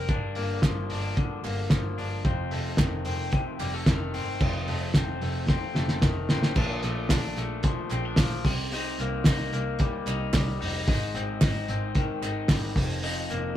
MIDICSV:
0, 0, Header, 1, 4, 480
1, 0, Start_track
1, 0, Tempo, 539084
1, 78, Time_signature, 4, 2, 24, 8
1, 12081, End_track
2, 0, Start_track
2, 0, Title_t, "Clean electric guitar"
2, 0, Program_c, 0, 27
2, 0, Note_on_c, 0, 55, 69
2, 0, Note_on_c, 0, 60, 54
2, 0, Note_on_c, 0, 70, 62
2, 79, Note_on_c, 0, 43, 80
2, 84, Note_on_c, 0, 62, 70
2, 126, Note_off_c, 0, 60, 0
2, 322, Note_on_c, 0, 58, 60
2, 567, Note_off_c, 0, 55, 0
2, 571, Note_on_c, 0, 53, 59
2, 798, Note_off_c, 0, 62, 0
2, 808, Note_on_c, 0, 62, 66
2, 1040, Note_on_c, 0, 50, 72
2, 1273, Note_off_c, 0, 58, 0
2, 1283, Note_on_c, 0, 58, 55
2, 1522, Note_off_c, 0, 53, 0
2, 1526, Note_on_c, 0, 53, 56
2, 1751, Note_off_c, 0, 62, 0
2, 1762, Note_on_c, 0, 62, 56
2, 1999, Note_off_c, 0, 43, 0
2, 2001, Note_off_c, 0, 62, 0
2, 2002, Note_on_c, 0, 41, 86
2, 2008, Note_on_c, 0, 60, 69
2, 2035, Note_off_c, 0, 70, 0
2, 2049, Note_off_c, 0, 50, 0
2, 2050, Note_off_c, 0, 58, 0
2, 2239, Note_on_c, 0, 57, 62
2, 2478, Note_off_c, 0, 53, 0
2, 2481, Note_on_c, 0, 51, 65
2, 2719, Note_off_c, 0, 60, 0
2, 2722, Note_on_c, 0, 60, 68
2, 2966, Note_on_c, 0, 48, 71
2, 3203, Note_off_c, 0, 57, 0
2, 3206, Note_on_c, 0, 55, 58
2, 3328, Note_off_c, 0, 55, 0
2, 3328, Note_on_c, 0, 57, 54
2, 3442, Note_off_c, 0, 51, 0
2, 3446, Note_on_c, 0, 51, 61
2, 3684, Note_off_c, 0, 60, 0
2, 3688, Note_on_c, 0, 60, 64
2, 3923, Note_off_c, 0, 41, 0
2, 3932, Note_on_c, 0, 41, 82
2, 3972, Note_off_c, 0, 48, 0
2, 3973, Note_off_c, 0, 57, 0
2, 4171, Note_on_c, 0, 57, 62
2, 4198, Note_off_c, 0, 51, 0
2, 4404, Note_off_c, 0, 60, 0
2, 4408, Note_on_c, 0, 60, 72
2, 4646, Note_off_c, 0, 57, 0
2, 4650, Note_on_c, 0, 57, 55
2, 4873, Note_off_c, 0, 60, 0
2, 4884, Note_on_c, 0, 60, 67
2, 5122, Note_off_c, 0, 57, 0
2, 5126, Note_on_c, 0, 57, 59
2, 5364, Note_on_c, 0, 51, 59
2, 5597, Note_off_c, 0, 60, 0
2, 5607, Note_on_c, 0, 60, 60
2, 5847, Note_off_c, 0, 41, 0
2, 5849, Note_on_c, 0, 46, 80
2, 5851, Note_off_c, 0, 60, 0
2, 5854, Note_on_c, 0, 62, 75
2, 5891, Note_off_c, 0, 51, 0
2, 5892, Note_off_c, 0, 57, 0
2, 6092, Note_on_c, 0, 57, 64
2, 6316, Note_off_c, 0, 62, 0
2, 6327, Note_on_c, 0, 62, 73
2, 6559, Note_off_c, 0, 57, 0
2, 6570, Note_on_c, 0, 57, 63
2, 6809, Note_on_c, 0, 53, 74
2, 7044, Note_off_c, 0, 62, 0
2, 7050, Note_on_c, 0, 60, 68
2, 7168, Note_off_c, 0, 60, 0
2, 7168, Note_on_c, 0, 62, 60
2, 7279, Note_off_c, 0, 53, 0
2, 7290, Note_on_c, 0, 53, 61
2, 7519, Note_off_c, 0, 46, 0
2, 7522, Note_on_c, 0, 48, 74
2, 7573, Note_off_c, 0, 57, 0
2, 7573, Note_off_c, 0, 62, 0
2, 7574, Note_off_c, 0, 53, 0
2, 7762, Note_off_c, 0, 48, 0
2, 7769, Note_on_c, 0, 48, 85
2, 7776, Note_on_c, 0, 63, 74
2, 8009, Note_on_c, 0, 58, 60
2, 8247, Note_off_c, 0, 63, 0
2, 8250, Note_on_c, 0, 63, 73
2, 8478, Note_off_c, 0, 58, 0
2, 8488, Note_on_c, 0, 58, 60
2, 8733, Note_on_c, 0, 55, 74
2, 8966, Note_off_c, 0, 63, 0
2, 8970, Note_on_c, 0, 63, 72
2, 9206, Note_off_c, 0, 55, 0
2, 9210, Note_on_c, 0, 55, 63
2, 9442, Note_off_c, 0, 63, 0
2, 9445, Note_on_c, 0, 63, 65
2, 9683, Note_on_c, 0, 44, 89
2, 9684, Note_off_c, 0, 48, 0
2, 9688, Note_off_c, 0, 63, 0
2, 9692, Note_on_c, 0, 63, 76
2, 9731, Note_off_c, 0, 58, 0
2, 9732, Note_off_c, 0, 55, 0
2, 9928, Note_on_c, 0, 60, 65
2, 10162, Note_off_c, 0, 63, 0
2, 10166, Note_on_c, 0, 63, 75
2, 10407, Note_off_c, 0, 60, 0
2, 10410, Note_on_c, 0, 60, 67
2, 10647, Note_on_c, 0, 51, 79
2, 10879, Note_off_c, 0, 63, 0
2, 10883, Note_on_c, 0, 63, 71
2, 11127, Note_on_c, 0, 55, 62
2, 11360, Note_off_c, 0, 44, 0
2, 11363, Note_on_c, 0, 41, 72
2, 11410, Note_off_c, 0, 55, 0
2, 11591, Note_off_c, 0, 41, 0
2, 11602, Note_on_c, 0, 41, 81
2, 11605, Note_off_c, 0, 63, 0
2, 11608, Note_on_c, 0, 63, 72
2, 11628, Note_off_c, 0, 51, 0
2, 11840, Note_off_c, 0, 60, 0
2, 11844, Note_on_c, 0, 58, 62
2, 12071, Note_off_c, 0, 63, 0
2, 12081, Note_off_c, 0, 41, 0
2, 12081, Note_off_c, 0, 58, 0
2, 12081, End_track
3, 0, Start_track
3, 0, Title_t, "Double bass"
3, 0, Program_c, 1, 43
3, 78, Note_on_c, 1, 31, 93
3, 275, Note_off_c, 1, 31, 0
3, 320, Note_on_c, 1, 31, 98
3, 517, Note_off_c, 1, 31, 0
3, 560, Note_on_c, 1, 31, 97
3, 756, Note_off_c, 1, 31, 0
3, 801, Note_on_c, 1, 31, 92
3, 1096, Note_off_c, 1, 31, 0
3, 1278, Note_on_c, 1, 31, 108
3, 1475, Note_off_c, 1, 31, 0
3, 1516, Note_on_c, 1, 31, 92
3, 1714, Note_off_c, 1, 31, 0
3, 1762, Note_on_c, 1, 31, 88
3, 1994, Note_off_c, 1, 31, 0
3, 1999, Note_on_c, 1, 29, 96
3, 2197, Note_off_c, 1, 29, 0
3, 2240, Note_on_c, 1, 29, 88
3, 2437, Note_off_c, 1, 29, 0
3, 2479, Note_on_c, 1, 29, 99
3, 2677, Note_off_c, 1, 29, 0
3, 2715, Note_on_c, 1, 29, 92
3, 3013, Note_off_c, 1, 29, 0
3, 3198, Note_on_c, 1, 29, 98
3, 3396, Note_off_c, 1, 29, 0
3, 3440, Note_on_c, 1, 29, 94
3, 3638, Note_off_c, 1, 29, 0
3, 3685, Note_on_c, 1, 31, 72
3, 3880, Note_off_c, 1, 31, 0
3, 3923, Note_on_c, 1, 29, 97
3, 4119, Note_off_c, 1, 29, 0
3, 4161, Note_on_c, 1, 29, 95
3, 4358, Note_off_c, 1, 29, 0
3, 4402, Note_on_c, 1, 29, 88
3, 4599, Note_off_c, 1, 29, 0
3, 4636, Note_on_c, 1, 29, 99
3, 4934, Note_off_c, 1, 29, 0
3, 5118, Note_on_c, 1, 29, 99
3, 5317, Note_off_c, 1, 29, 0
3, 5362, Note_on_c, 1, 29, 94
3, 5559, Note_off_c, 1, 29, 0
3, 5599, Note_on_c, 1, 33, 83
3, 5797, Note_off_c, 1, 33, 0
3, 5838, Note_on_c, 1, 34, 101
3, 6037, Note_off_c, 1, 34, 0
3, 6080, Note_on_c, 1, 34, 103
3, 6277, Note_off_c, 1, 34, 0
3, 6324, Note_on_c, 1, 34, 95
3, 6520, Note_off_c, 1, 34, 0
3, 6561, Note_on_c, 1, 34, 94
3, 6857, Note_off_c, 1, 34, 0
3, 7044, Note_on_c, 1, 34, 107
3, 7239, Note_off_c, 1, 34, 0
3, 7278, Note_on_c, 1, 34, 109
3, 7476, Note_off_c, 1, 34, 0
3, 7522, Note_on_c, 1, 36, 95
3, 7915, Note_off_c, 1, 36, 0
3, 8002, Note_on_c, 1, 36, 101
3, 8198, Note_off_c, 1, 36, 0
3, 8242, Note_on_c, 1, 36, 100
3, 8438, Note_off_c, 1, 36, 0
3, 8481, Note_on_c, 1, 36, 99
3, 8776, Note_off_c, 1, 36, 0
3, 8959, Note_on_c, 1, 36, 107
3, 9156, Note_off_c, 1, 36, 0
3, 9199, Note_on_c, 1, 36, 109
3, 9396, Note_off_c, 1, 36, 0
3, 9442, Note_on_c, 1, 29, 97
3, 9638, Note_off_c, 1, 29, 0
3, 9685, Note_on_c, 1, 32, 106
3, 9879, Note_off_c, 1, 32, 0
3, 9923, Note_on_c, 1, 32, 102
3, 10118, Note_off_c, 1, 32, 0
3, 10162, Note_on_c, 1, 32, 107
3, 10358, Note_off_c, 1, 32, 0
3, 10406, Note_on_c, 1, 32, 105
3, 10698, Note_off_c, 1, 32, 0
3, 10878, Note_on_c, 1, 32, 98
3, 11075, Note_off_c, 1, 32, 0
3, 11123, Note_on_c, 1, 32, 98
3, 11317, Note_off_c, 1, 32, 0
3, 11359, Note_on_c, 1, 29, 98
3, 11752, Note_off_c, 1, 29, 0
3, 11840, Note_on_c, 1, 29, 90
3, 12036, Note_off_c, 1, 29, 0
3, 12081, End_track
4, 0, Start_track
4, 0, Title_t, "Drums"
4, 75, Note_on_c, 9, 42, 69
4, 79, Note_on_c, 9, 36, 115
4, 164, Note_off_c, 9, 42, 0
4, 168, Note_off_c, 9, 36, 0
4, 313, Note_on_c, 9, 46, 74
4, 402, Note_off_c, 9, 46, 0
4, 554, Note_on_c, 9, 38, 113
4, 560, Note_on_c, 9, 36, 106
4, 560, Note_on_c, 9, 42, 63
4, 571, Note_on_c, 9, 39, 87
4, 643, Note_off_c, 9, 38, 0
4, 649, Note_off_c, 9, 36, 0
4, 649, Note_off_c, 9, 42, 0
4, 660, Note_off_c, 9, 39, 0
4, 798, Note_on_c, 9, 46, 71
4, 887, Note_off_c, 9, 46, 0
4, 1041, Note_on_c, 9, 42, 81
4, 1044, Note_on_c, 9, 36, 108
4, 1130, Note_off_c, 9, 42, 0
4, 1133, Note_off_c, 9, 36, 0
4, 1285, Note_on_c, 9, 46, 75
4, 1286, Note_on_c, 9, 39, 62
4, 1374, Note_off_c, 9, 46, 0
4, 1375, Note_off_c, 9, 39, 0
4, 1514, Note_on_c, 9, 38, 104
4, 1518, Note_on_c, 9, 42, 78
4, 1519, Note_on_c, 9, 36, 109
4, 1528, Note_on_c, 9, 39, 76
4, 1603, Note_off_c, 9, 38, 0
4, 1607, Note_off_c, 9, 42, 0
4, 1608, Note_off_c, 9, 36, 0
4, 1617, Note_off_c, 9, 39, 0
4, 1766, Note_on_c, 9, 46, 61
4, 1855, Note_off_c, 9, 46, 0
4, 2002, Note_on_c, 9, 36, 114
4, 2004, Note_on_c, 9, 42, 74
4, 2091, Note_off_c, 9, 36, 0
4, 2093, Note_off_c, 9, 42, 0
4, 2236, Note_on_c, 9, 46, 74
4, 2325, Note_off_c, 9, 46, 0
4, 2468, Note_on_c, 9, 38, 120
4, 2475, Note_on_c, 9, 42, 68
4, 2479, Note_on_c, 9, 36, 116
4, 2486, Note_on_c, 9, 39, 86
4, 2557, Note_off_c, 9, 38, 0
4, 2564, Note_off_c, 9, 42, 0
4, 2568, Note_off_c, 9, 36, 0
4, 2575, Note_off_c, 9, 39, 0
4, 2714, Note_on_c, 9, 46, 64
4, 2803, Note_off_c, 9, 46, 0
4, 2953, Note_on_c, 9, 42, 78
4, 2962, Note_on_c, 9, 36, 104
4, 3042, Note_off_c, 9, 42, 0
4, 3051, Note_off_c, 9, 36, 0
4, 3198, Note_on_c, 9, 46, 77
4, 3208, Note_on_c, 9, 39, 67
4, 3287, Note_off_c, 9, 46, 0
4, 3297, Note_off_c, 9, 39, 0
4, 3440, Note_on_c, 9, 38, 109
4, 3441, Note_on_c, 9, 36, 118
4, 3444, Note_on_c, 9, 42, 79
4, 3448, Note_on_c, 9, 39, 74
4, 3529, Note_off_c, 9, 38, 0
4, 3530, Note_off_c, 9, 36, 0
4, 3533, Note_off_c, 9, 42, 0
4, 3537, Note_off_c, 9, 39, 0
4, 3685, Note_on_c, 9, 46, 65
4, 3774, Note_off_c, 9, 46, 0
4, 3923, Note_on_c, 9, 49, 93
4, 3924, Note_on_c, 9, 36, 119
4, 4012, Note_off_c, 9, 49, 0
4, 4013, Note_off_c, 9, 36, 0
4, 4163, Note_on_c, 9, 46, 73
4, 4252, Note_off_c, 9, 46, 0
4, 4397, Note_on_c, 9, 38, 116
4, 4403, Note_on_c, 9, 42, 66
4, 4404, Note_on_c, 9, 36, 112
4, 4416, Note_on_c, 9, 39, 87
4, 4486, Note_off_c, 9, 38, 0
4, 4493, Note_off_c, 9, 36, 0
4, 4493, Note_off_c, 9, 42, 0
4, 4505, Note_off_c, 9, 39, 0
4, 4643, Note_on_c, 9, 46, 72
4, 4732, Note_off_c, 9, 46, 0
4, 4883, Note_on_c, 9, 38, 60
4, 4884, Note_on_c, 9, 36, 111
4, 4972, Note_off_c, 9, 38, 0
4, 4973, Note_off_c, 9, 36, 0
4, 5121, Note_on_c, 9, 38, 69
4, 5210, Note_off_c, 9, 38, 0
4, 5238, Note_on_c, 9, 38, 62
4, 5327, Note_off_c, 9, 38, 0
4, 5357, Note_on_c, 9, 38, 89
4, 5362, Note_on_c, 9, 36, 116
4, 5370, Note_on_c, 9, 39, 72
4, 5446, Note_off_c, 9, 38, 0
4, 5451, Note_off_c, 9, 36, 0
4, 5459, Note_off_c, 9, 39, 0
4, 5599, Note_on_c, 9, 38, 94
4, 5688, Note_off_c, 9, 38, 0
4, 5722, Note_on_c, 9, 38, 87
4, 5811, Note_off_c, 9, 38, 0
4, 5837, Note_on_c, 9, 49, 97
4, 5842, Note_on_c, 9, 36, 124
4, 5926, Note_off_c, 9, 49, 0
4, 5931, Note_off_c, 9, 36, 0
4, 6076, Note_on_c, 9, 46, 80
4, 6078, Note_on_c, 9, 44, 65
4, 6165, Note_off_c, 9, 46, 0
4, 6167, Note_off_c, 9, 44, 0
4, 6314, Note_on_c, 9, 38, 121
4, 6320, Note_on_c, 9, 44, 68
4, 6321, Note_on_c, 9, 46, 71
4, 6323, Note_on_c, 9, 36, 117
4, 6333, Note_on_c, 9, 39, 91
4, 6403, Note_off_c, 9, 38, 0
4, 6409, Note_off_c, 9, 44, 0
4, 6410, Note_off_c, 9, 46, 0
4, 6412, Note_off_c, 9, 36, 0
4, 6422, Note_off_c, 9, 39, 0
4, 6555, Note_on_c, 9, 46, 74
4, 6557, Note_on_c, 9, 44, 65
4, 6644, Note_off_c, 9, 46, 0
4, 6646, Note_off_c, 9, 44, 0
4, 6792, Note_on_c, 9, 46, 86
4, 6794, Note_on_c, 9, 44, 60
4, 6801, Note_on_c, 9, 36, 118
4, 6881, Note_off_c, 9, 46, 0
4, 6883, Note_off_c, 9, 44, 0
4, 6890, Note_off_c, 9, 36, 0
4, 7030, Note_on_c, 9, 46, 79
4, 7031, Note_on_c, 9, 44, 67
4, 7052, Note_on_c, 9, 39, 68
4, 7119, Note_off_c, 9, 46, 0
4, 7120, Note_off_c, 9, 44, 0
4, 7141, Note_off_c, 9, 39, 0
4, 7268, Note_on_c, 9, 38, 115
4, 7272, Note_on_c, 9, 44, 69
4, 7273, Note_on_c, 9, 46, 87
4, 7279, Note_on_c, 9, 36, 126
4, 7288, Note_on_c, 9, 39, 77
4, 7357, Note_off_c, 9, 38, 0
4, 7361, Note_off_c, 9, 44, 0
4, 7362, Note_off_c, 9, 46, 0
4, 7368, Note_off_c, 9, 36, 0
4, 7377, Note_off_c, 9, 39, 0
4, 7518, Note_on_c, 9, 44, 62
4, 7521, Note_on_c, 9, 36, 100
4, 7521, Note_on_c, 9, 46, 67
4, 7607, Note_off_c, 9, 44, 0
4, 7610, Note_off_c, 9, 36, 0
4, 7610, Note_off_c, 9, 46, 0
4, 7759, Note_on_c, 9, 44, 73
4, 7760, Note_on_c, 9, 46, 79
4, 7848, Note_off_c, 9, 44, 0
4, 7849, Note_off_c, 9, 46, 0
4, 8002, Note_on_c, 9, 46, 82
4, 8003, Note_on_c, 9, 44, 61
4, 8091, Note_off_c, 9, 46, 0
4, 8092, Note_off_c, 9, 44, 0
4, 8230, Note_on_c, 9, 38, 124
4, 8236, Note_on_c, 9, 44, 71
4, 8237, Note_on_c, 9, 46, 69
4, 8242, Note_on_c, 9, 36, 119
4, 8254, Note_on_c, 9, 39, 93
4, 8319, Note_off_c, 9, 38, 0
4, 8325, Note_off_c, 9, 44, 0
4, 8326, Note_off_c, 9, 46, 0
4, 8331, Note_off_c, 9, 36, 0
4, 8343, Note_off_c, 9, 39, 0
4, 8481, Note_on_c, 9, 46, 79
4, 8483, Note_on_c, 9, 44, 63
4, 8570, Note_off_c, 9, 46, 0
4, 8572, Note_off_c, 9, 44, 0
4, 8714, Note_on_c, 9, 46, 81
4, 8715, Note_on_c, 9, 44, 64
4, 8724, Note_on_c, 9, 36, 117
4, 8803, Note_off_c, 9, 46, 0
4, 8804, Note_off_c, 9, 44, 0
4, 8813, Note_off_c, 9, 36, 0
4, 8957, Note_on_c, 9, 46, 80
4, 8958, Note_on_c, 9, 44, 66
4, 8971, Note_on_c, 9, 39, 74
4, 9046, Note_off_c, 9, 46, 0
4, 9047, Note_off_c, 9, 44, 0
4, 9061, Note_off_c, 9, 39, 0
4, 9199, Note_on_c, 9, 38, 121
4, 9202, Note_on_c, 9, 44, 67
4, 9203, Note_on_c, 9, 36, 121
4, 9203, Note_on_c, 9, 39, 85
4, 9204, Note_on_c, 9, 46, 80
4, 9288, Note_off_c, 9, 38, 0
4, 9291, Note_off_c, 9, 44, 0
4, 9292, Note_off_c, 9, 36, 0
4, 9292, Note_off_c, 9, 39, 0
4, 9293, Note_off_c, 9, 46, 0
4, 9450, Note_on_c, 9, 44, 63
4, 9453, Note_on_c, 9, 46, 70
4, 9539, Note_off_c, 9, 44, 0
4, 9542, Note_off_c, 9, 46, 0
4, 9682, Note_on_c, 9, 44, 70
4, 9683, Note_on_c, 9, 46, 78
4, 9685, Note_on_c, 9, 36, 125
4, 9771, Note_off_c, 9, 44, 0
4, 9772, Note_off_c, 9, 46, 0
4, 9774, Note_off_c, 9, 36, 0
4, 9923, Note_on_c, 9, 46, 81
4, 9924, Note_on_c, 9, 44, 65
4, 10012, Note_off_c, 9, 46, 0
4, 10013, Note_off_c, 9, 44, 0
4, 10159, Note_on_c, 9, 38, 127
4, 10164, Note_on_c, 9, 44, 66
4, 10165, Note_on_c, 9, 36, 115
4, 10165, Note_on_c, 9, 39, 89
4, 10165, Note_on_c, 9, 46, 74
4, 10248, Note_off_c, 9, 38, 0
4, 10253, Note_off_c, 9, 44, 0
4, 10254, Note_off_c, 9, 36, 0
4, 10254, Note_off_c, 9, 39, 0
4, 10254, Note_off_c, 9, 46, 0
4, 10402, Note_on_c, 9, 46, 77
4, 10404, Note_on_c, 9, 44, 63
4, 10491, Note_off_c, 9, 46, 0
4, 10493, Note_off_c, 9, 44, 0
4, 10638, Note_on_c, 9, 46, 84
4, 10640, Note_on_c, 9, 44, 64
4, 10644, Note_on_c, 9, 36, 110
4, 10727, Note_off_c, 9, 46, 0
4, 10729, Note_off_c, 9, 44, 0
4, 10733, Note_off_c, 9, 36, 0
4, 10885, Note_on_c, 9, 44, 67
4, 10885, Note_on_c, 9, 46, 78
4, 10891, Note_on_c, 9, 39, 74
4, 10974, Note_off_c, 9, 44, 0
4, 10974, Note_off_c, 9, 46, 0
4, 10980, Note_off_c, 9, 39, 0
4, 11115, Note_on_c, 9, 38, 116
4, 11119, Note_on_c, 9, 44, 68
4, 11119, Note_on_c, 9, 46, 84
4, 11121, Note_on_c, 9, 36, 125
4, 11126, Note_on_c, 9, 39, 82
4, 11204, Note_off_c, 9, 38, 0
4, 11208, Note_off_c, 9, 44, 0
4, 11209, Note_off_c, 9, 46, 0
4, 11210, Note_off_c, 9, 36, 0
4, 11215, Note_off_c, 9, 39, 0
4, 11361, Note_on_c, 9, 36, 109
4, 11365, Note_on_c, 9, 44, 67
4, 11368, Note_on_c, 9, 46, 68
4, 11450, Note_off_c, 9, 36, 0
4, 11454, Note_off_c, 9, 44, 0
4, 11457, Note_off_c, 9, 46, 0
4, 11599, Note_on_c, 9, 44, 71
4, 11600, Note_on_c, 9, 46, 85
4, 11688, Note_off_c, 9, 44, 0
4, 11689, Note_off_c, 9, 46, 0
4, 11833, Note_on_c, 9, 46, 75
4, 11835, Note_on_c, 9, 44, 67
4, 11922, Note_off_c, 9, 46, 0
4, 11924, Note_off_c, 9, 44, 0
4, 12081, End_track
0, 0, End_of_file